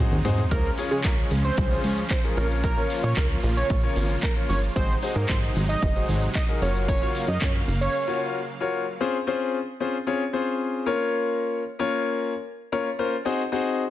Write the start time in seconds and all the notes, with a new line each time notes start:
Already playing: C3 F#3 G#3 D#4
0.00 C4 D#4 F#4 G#4 C5
0.12 D#2, shaker
0.25 G#2 C4 D#4 F#4 G#4 C5, floor tom, open hi-hat, shaker
0.38 floor tom, shaker
0.51 C#2 C#3 F3 G#3 C#4 F4 G#4 A#4 C5, kick, closed hi-hat, shaker
0.65 shaker
0.78 C#4 F4 G#4 C#5, open hi-hat, shaker
0.91 C#3 G#4, shaker
1.04 C#2 A#4, kick, clap, closed hi-hat, shaker
1.18 shaker
1.31 C#2, open hi-hat, shaker
1.44 C5, shaker
1.57 C2, kick, closed hi-hat, shaker
1.70 C#4 F4 G#4 C5, shaker
1.84 C#2, open hi-hat, shaker
1.97 shaker
2.11 C5, kick, clap, closed hi-hat, shaker
2.24 C#4 F4 G#4 A#4, shaker
2.37 A#1 C#3 A#3 C#4 F4 A#4 C#5, open hi-hat, shaker
2.50 shaker
2.64 A#4, kick, closed hi-hat, shaker
2.77 C#4 F4 A#4 C#5, shaker
2.90 open hi-hat, shaker
3.04 A#2 C#5, shaker
3.17 C#2 A#4, kick, clap, closed hi-hat, shaker
3.30 shaker
3.43 A#1, open hi-hat, shaker
3.57 C#5, shaker
3.70 A#1, kick, closed hi-hat, shaker
3.83 C#4 F4 A#4 C#5, shaker
3.96 G#1, open hi-hat, shaker
4.09 shaker
4.23 A#4, kick, clap, closed hi-hat, shaker
4.36 C#4 F4 A#4 C#5, shaker
4.49 G1 C#5, open hi-hat, shaker
4.63 shaker
4.76 G#1 C3 F#3 G#3 D#4 F#4 G#4 C5, kick, closed hi-hat, shaker
4.90 shaker
5.02 D#4 F#4 G#4 C5, open hi-hat, shaker
5.16 G#2 A#4, shaker
5.29 G#1 C5, kick, clap, closed hi-hat, shaker
5.43 shaker
5.56 G#1, open hi-hat, shaker
5.69 D#5, shaker
5.82 F#1, kick, closed hi-hat, shaker
5.95 D#4 F#4 G#4 C5, shaker
6.09 G#1, open hi-hat, shaker
6.22 shaker
6.35 D#5, kick, clap, closed hi-hat, shaker
6.49 D#4 F#4 G#4 A#4, shaker
6.62 F#1 C#3 A#3 F4 F#4 A#4 C#5 F5, open hi-hat, shaker
6.75 shaker
6.88 C#5, kick, closed hi-hat, shaker
7.01 F4 F#4 A#4 C#5, shaker
7.15 open hi-hat, shaker
7.28 F#2 D#5, shaker
7.42 F#2 C#5, kick, clap, closed hi-hat, shaker
7.55 shaker
7.68 F#1, open hi-hat, shaker
7.81 C#5, shaker
8.07 F4 F#4 A#4 C#5
8.61 F4 F#4 A#4 C#5
9.01 C4 C#4 F4 G#4 C5
9.27 C4 C#4 F4 G#4 C5
9.80 C4 C#4 F4 G#4 C5
10.07 C4 C#4 F4 G#4 C#5
10.33 C4 C#4 F4 G#4 C5
10.86 A#3 C#4 F4 A#4 C#5
11.79 A#3 C#4 F4 A#4 C#5
12.72 A#3 C#4 F4 A#4 C#5
12.99 A#3 C#4 F4 A#4 C5
13.25 C4 D#4 F#4 G#4 C5
13.52 C4 D#4 F#4 G#4 C5